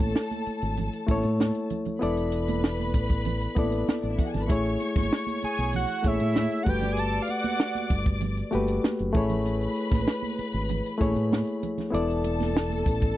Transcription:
Already playing: reed electric piano A3 E4 A4 C#5, string section A4 A5
0.00 fingered electric bass A1, kick, closed hi-hat, high conga
0.16 snare, muted conga
0.31 closed hi-hat, high conga
0.46 muted fingered electric bass stroke, closed hi-hat
0.62 fingered electric bass G#1, closed hi-hat
0.77 closed hi-hat, low conga
0.93 closed hi-hat
1.07 fingered electric bass A1, reed electric piano A3 E4 A4, kick, closed hi-hat, muted conga, high conga
1.11 reed electric piano C#5
1.23 fingered electric bass A2, closed hi-hat
1.40 snare, muted conga, high conga
1.55 closed hi-hat
1.70 closed hi-hat, low conga
1.85 closed hi-hat, low conga
1.99 fingered electric bass E1, reed electric piano B3 E4 A4 D5, string section B4 B5, closed hi-hat
2.17 closed hi-hat
2.32 closed hi-hat
2.48 closed hi-hat, high conga
2.64 snare, muted conga
2.79 closed hi-hat, high conga
2.94 fingered electric bass A1, kick, closed hi-hat, muted conga
3.09 kick, closed hi-hat
3.25 closed hi-hat, muted conga, low conga
3.41 closed hi-hat
3.55 fingered electric bass A1, reed electric piano B3 E4 A4 D5, kick, closed hi-hat, muted conga, high conga
3.72 closed hi-hat
3.88 muted fingered electric bass stroke, snare, muted conga, high conga
4.02 fingered electric bass A1, string section D4 D5, closed hi-hat
4.11 string section E4 E5
4.19 string section F#4 F#5, kick, closed hi-hat, muted conga, low conga
4.27 string section G#4 G#5
4.34 fingered electric bass G#1, string section A4 A5, snare, closed hi-hat, low conga
4.41 string section B4 B5
4.47 fingered electric bass A1, reed electric piano A3 E4 G#4, string section C#5 C#6, kick, closed hi-hat, muted conga
4.52 reed electric piano C#5
4.65 closed hi-hat
4.80 closed hi-hat, muted conga
4.96 fingered electric bass G#1, kick, snare, closed hi-hat, high conga
5.13 snare
5.27 closed hi-hat, high conga
5.42 analog synth lead G#5, muted fingered electric bass stroke, closed hi-hat, muted conga
5.57 fingered electric bass B1, closed hi-hat
5.73 analog synth lead F#5, closed hi-hat, low conga
5.89 closed hi-hat
6.03 fingered electric bass A1, reed electric piano A3 E4 G#4 C#5, kick, closed hi-hat, muted conga, high conga
6.07 analog synth lead E5
6.20 fingered electric bass A2, closed hi-hat
6.36 snare, muted conga, high conga
6.51 closed hi-hat
6.63 reed electric piano A3 F#4, string section D5 D6, analog synth lead F#5, kick, closed hi-hat
6.67 fingered electric bass G1, reed electric piano G4 B4, analog synth lead G5, muted conga, low conga
6.81 snare, closed hi-hat, low conga
6.92 analog synth lead G#5
6.97 analog synth lead A5, closed hi-hat, muted conga
7.13 closed hi-hat
7.22 analog synth lead F5
7.28 analog synth lead F#5, closed hi-hat, muted conga
7.43 closed hi-hat, high conga
7.60 snare, muted conga
7.75 closed hi-hat, high conga
7.90 fingered electric bass G1, kick, open hi-hat, muted conga
8.05 kick, closed hi-hat
8.21 closed hi-hat, muted conga, low conga
8.37 closed hi-hat
8.51 fingered electric bass G1, reed electric piano A3 F#4 G4 B4, closed hi-hat, muted conga, high conga
8.68 closed hi-hat
8.84 snare, high conga
8.99 fingered electric bass F#1, closed hi-hat
9.13 fingered electric bass A1, reed electric piano A3 E4 G#4 C#5, string section B4 B5, kick, closed hi-hat, muted conga, low conga
9.30 closed hi-hat, low conga
9.46 closed hi-hat, muted conga
9.61 closed hi-hat
9.76 closed hi-hat
9.92 fingered electric bass A1, kick, snare, closed hi-hat, high conga
10.07 snare, muted conga
10.23 closed hi-hat, high conga
10.39 muted fingered electric bass stroke, closed hi-hat, muted conga
10.53 fingered electric bass G#1, closed hi-hat
10.69 closed hi-hat, low conga
10.86 closed hi-hat
10.98 fingered electric bass A1, reed electric piano A3 E4 G#4 C#5, kick, closed hi-hat, muted conga, high conga
11.16 fingered electric bass A2, closed hi-hat
11.32 snare, high conga
11.47 closed hi-hat
11.63 closed hi-hat, muted conga, low conga
11.78 snare, closed hi-hat, low conga
11.90 fingered electric bass E1, reed electric piano B3 E4 A4, string section A4 A5, closed hi-hat
11.94 reed electric piano D5
12.10 closed hi-hat
12.24 closed hi-hat, muted conga
12.40 snare, closed hi-hat, high conga
12.55 snare, muted conga
12.70 closed hi-hat, high conga
12.86 fingered electric bass A1, kick, closed hi-hat, muted conga
13.01 kick, closed hi-hat

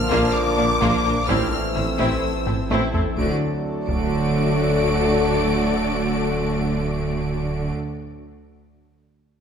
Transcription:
Already playing: sub bass A#1, trombone section D3 F3, analog synth pad A#3 D4 F4 D5, french horn section D4 A#4, violin section F6
0.10 double bass section A#1, tuba A#1, cello section A#2, violin section A#3 F4, synth arpeggio sound A#3, viola section A#3 D4, taiko
0.34 violin section D6
0.58 tuba A#1, double bass section A#1, cello section A#2, viola section A#3 D4, synth arpeggio sound D4, violin section F4 D5
0.81 double bass section A#1, tuba A#1, cello section A#2, synth arpeggio sound A#3, violin section A#3 F4, viola section A#3 D4, taiko
1.05 tuba A#1, double bass section A#1, cello section A#2, viola section A#3 D4, violin section D4 A#4, synth arpeggio sound A#4
1.28 sub bass A1, tuba A1, double bass section A1, cello section A2, trombone section E3 A3, synth arpeggio sound A3, viola section C4 E4, violin section C4 E4 F6, french horn section C4 C5, analog synth pad C4 E4 A4 C5, taiko
1.75 tuba A1, double bass section A1, cello section A2, viola section C4 E4, synth arpeggio sound E4, violin section A4 C5 E6, taiko mid
1.98 tuba A1, double bass section A1, cello section A2, synth arpeggio sound A3, viola section C4 E4, violin section C4 E4, taiko
2.47 tuba A1, double bass section A1, cello section A2, viola section C4 E4, synth arpeggio sound C4, violin section A4 C5, taiko low-mid
2.70 tuba A1, double bass section A1, cello section A2, synth arpeggio sound A3, viola section C4 E4, violin section C4 E4, taiko high
2.93 tuba A1, double bass section A1, cello section A2, viola section C4 E4, violin section E4 A4, synth arpeggio sound A4, taiko low
3.17 sub bass D1, tuba D2, double bass section D2, cello section D3, trombone section F#3 A3, viola section A3 F#4, analog synth pad A3 F#4 A4 D5, french horn section D4 A4, violin section A4 D5 D7, taiko
3.88 sub bass D1, tuba D2, double bass section D2, cello section D3, viola section A3 F#4, violin section A4 D5 D7, taiko

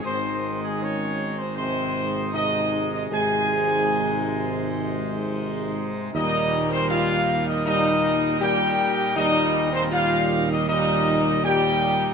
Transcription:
0.02 tuba G#1, pipe organ G#2 G#3 D#4 D#5, trombone section D#3 G#3, french horn section C4, trumpet section C5
0.62 french horn section G#3, trumpet section G#4
0.80 french horn section C#4, trumpet section C#5
1.38 french horn section C4, trumpet section C5
1.56 trombone section C3 G#3, french horn section C4, trumpet section C5
2.32 trombone section C3 G#3, french horn section D#4, trumpet section D#5
2.92 french horn section D#4, trumpet section D#5
3.11 tuba G#1, pipe organ G#2 G#3 D#4 C5, trombone section C3 G#3, french horn section G#4, trumpet section G#5
6.14 tuba D#2, pipe organ A#2 G3 D#4 A#4, trombone section A#2 G3, french horn section D#4, trumpet section D#5
6.71 french horn section C4, trumpet section C5
6.90 french horn section F4, trumpet section F5
7.47 french horn section D#4, trumpet section D#5
7.65 trombone section A#2 G3, french horn section D#4, trumpet section D#5
8.39 trombone section A#2 G3, french horn section G4, trumpet section G5
9.16 tuba D#2, trombone section A#2 G3, pipe organ A#2 G3 D#4 A#4, french horn section D#4, trumpet section D#5
9.72 french horn section C4, trumpet section C5
9.91 french horn section F4, trumpet section F5
10.49 french horn section D#4, trumpet section D#5
10.68 trombone section A#2 G3, french horn section D#4, trumpet section D#5
11.43 trombone section A#2 G3, french horn section G4, trumpet section G5

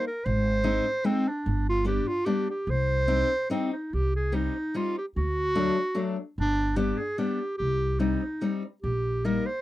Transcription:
0.07 clarinet A#4
0.25 upright bass G#1, clarinet C5
0.64 steel-string acoustic guitar G#3 C4 D#4
1.04 steel-string acoustic guitar G#3 C4 D#4, clarinet C4
1.28 clarinet D4
1.46 upright bass G1
1.69 clarinet F4
1.85 steel-string acoustic guitar G3 B3 D4, clarinet G4
2.08 clarinet F4
2.26 steel-string acoustic guitar G3 B3 D4, clarinet G4
2.50 clarinet G4
2.67 upright bass C2, clarinet C5
3.08 steel-string acoustic guitar G3 C4 D#4
3.50 steel-string acoustic guitar G3 C4 D#4, clarinet C4
3.73 clarinet D#4
3.93 upright bass C2, clarinet G4
4.16 clarinet G#4
4.32 steel-string acoustic guitar G3 C4 D#4, clarinet D#4
4.74 steel-string acoustic guitar G3 C4 D#4, clarinet F4
4.98 clarinet G4
5.16 upright bass D2, clarinet F#4
5.55 steel-string acoustic guitar F#3 A3 D4
5.95 steel-string acoustic guitar F#3 A3 D4
6.38 upright bass G1, clarinet D4
6.76 steel-string acoustic guitar G3 B3 D4, clarinet G4
6.97 clarinet G#4
7.18 steel-string acoustic guitar G3 B3 D4, clarinet G4
7.58 upright bass C2, clarinet G4
8.00 steel-string acoustic guitar G3 C4 D#4, clarinet D#4
8.41 steel-string acoustic guitar G3 C4 D#4
8.82 upright bass A#1, clarinet G4
9.25 steel-string acoustic guitar G3 A#3 D#4, clarinet A#4
9.46 clarinet C5

